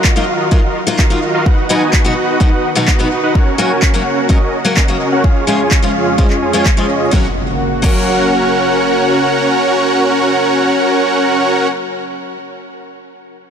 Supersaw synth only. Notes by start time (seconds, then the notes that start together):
Already playing: F4 F#4 A#4 D#5 F#5
0.16 F4 F#4 A#4 D#5 F5
0.52 F4 F#4 A#4 D#5 F5
0.99 F4 F#4 A#4 D#5 F5
1.34 F4 F#4 A#4 D#5 F5
1.46 D#4 F#4 B4 D#5 F#5
1.70 D#4 F#4 B4 D#5 G#5
2.05 D#4 F#4 B4 D#5 F#5
2.41 D#4 F#4 B4 D#5 F#5
2.88 D#4 F#4 B4 D#5 F#5
3.23 D#4 F#4 B4 D#5 F#5
3.35 C#4 F#4 A#4 C#5 F#5
3.59 C#4 F#4 A#4 C#5 G#5
3.94 C#4 F#4 A#4 C#5 F#5
4.30 C#4 F#4 A#4 C#5 D#5
4.77 C#4 F#4 A#4 C#5 D#5
5.12 C#4 F#4 A#4 C#5 F#5
5.24 C#4 F4 G#4 C#5 F5
5.48 C#4 F4 G#4 C#5 G#5
5.83 C#4 F4 G#4 C#5 F5
6.19 C#4 F4 G#4 C#5 D#5
6.42 C#4 F4 G#4 C#5 G#5
6.78 C#4 F4 G#4 C#5 D#5
7.13 C#4 F#4 A#4 C#5 F#5
7.84 C#4 F#4 A#4 C#5 F#5